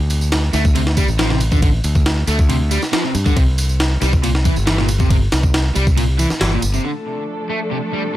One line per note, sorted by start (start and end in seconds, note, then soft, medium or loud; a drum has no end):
0.00 0.49 D2 medium
0.10 ride medium
0.10 tambourine medium
0.21 tambourine soft
0.32 snare loud
0.32 ride medium
0.32 tambourine soft
0.53 1.03 D2 medium
0.53 0.63 A3 medium
0.53 snare soft
0.53 ride medium
0.53 tambourine medium
0.65 kick loud
0.65 tambourine soft
0.75 0.81 C3 loud
0.75 ride medium
0.75 tambourine soft
0.87 snare medium
0.97 1.06 G3 medium
0.97 kick medium
0.97 ride medium
0.97 tambourine medium
1.08 1.79 A1 loud
1.08 tambourine soft
1.19 1.29 F3 medium
1.19 snare loud
1.19 ride medium
1.19 tambourine soft
1.30 1.39 C3 medium
1.30 snare soft
1.40 ride medium
1.40 tambourine medium
1.52 1.61 D3 medium
1.52 kick loud
1.52 tambourine soft
1.62 1.68 D3 loud
1.62 kick loud
1.62 ride medium
1.84 2.23 D2 medium
1.84 ride medium
1.84 tambourine medium
1.95 kick medium
1.95 tambourine soft
2.06 snare loud
2.06 ride medium
2.06 tambourine soft
2.27 2.77 D2 medium
2.27 2.37 A3 medium
2.27 ride medium
2.27 tambourine medium
2.39 kick medium
2.39 tambourine soft
2.49 2.55 C3 loud
2.49 ride medium
2.49 tambourine soft
2.71 2.80 G3 medium
2.71 ride medium
2.71 tambourine medium
2.82 snare soft
2.82 tambourine soft
2.93 3.03 F3 medium
2.93 snare loud
2.93 ride medium
2.93 tambourine soft
3.04 3.13 C3 medium
3.15 3.30 G2 medium
3.15 ride medium
3.15 tambourine medium
3.26 3.36 D3 medium
3.26 kick medium
3.26 tambourine soft
3.36 3.97 C2 medium
3.36 3.42 C3 loud
3.36 kick loud
3.36 ride medium
3.36 tambourine soft
3.58 ride medium
3.58 tambourine medium
3.69 tambourine soft
3.80 snare loud
3.80 ride medium
3.80 tambourine soft
4.01 4.51 C2 loud
4.01 4.11 G3 medium
4.01 snare soft
4.01 ride medium
4.01 tambourine medium
4.13 kick medium
4.13 tambourine soft
4.23 4.29 A#2 loud
4.23 ride medium
4.23 tambourine soft
4.35 snare medium
4.45 4.54 E3 medium
4.45 kick loud
4.45 ride medium
4.45 tambourine medium
4.56 5.27 G1 loud
4.56 tambourine soft
4.67 4.77 E3 medium
4.67 snare loud
4.67 ride medium
4.67 tambourine soft
4.78 4.87 A#2 medium
4.78 snare soft
4.88 ride medium
4.88 tambourine medium
5.00 5.09 C3 medium
5.00 kick medium
5.00 tambourine soft
5.10 5.16 C3 loud
5.10 kick loud
5.10 ride medium
5.10 tambourine soft
5.32 5.71 C2 medium
5.32 snare loud
5.32 ride medium
5.32 tambourine medium
5.43 kick loud
5.43 tambourine soft
5.54 snare loud
5.54 ride medium
5.54 tambourine soft
5.75 6.25 C2 loud
5.75 5.85 G3 medium
5.75 ride medium
5.75 tambourine medium
5.87 kick medium
5.87 tambourine soft
5.97 6.03 A#2 loud
5.97 ride medium
5.97 tambourine soft
6.19 6.28 E3 medium
6.19 ride medium
6.19 tambourine medium
6.30 snare soft
6.30 tambourine soft
6.41 6.56 G1 medium
6.41 6.51 E3 medium
6.41 snare loud
6.41 ride medium
6.41 tambourine soft
6.52 6.61 A#2 medium
6.62 6.78 G1 medium
6.62 ride medium
6.62 tambourine medium
6.74 6.84 C3 medium
6.74 tambourine soft
6.84 6.90 D3 loud
6.84 8.17 F3 medium
6.84 8.17 A3 medium
6.84 8.17 D4 medium
6.84 8.17 A4 medium
7.06 tambourine medium
7.27 tambourine soft
7.50 7.59 A3 medium
7.61 tambourine soft
7.71 7.77 C3 loud
7.93 8.02 G3 medium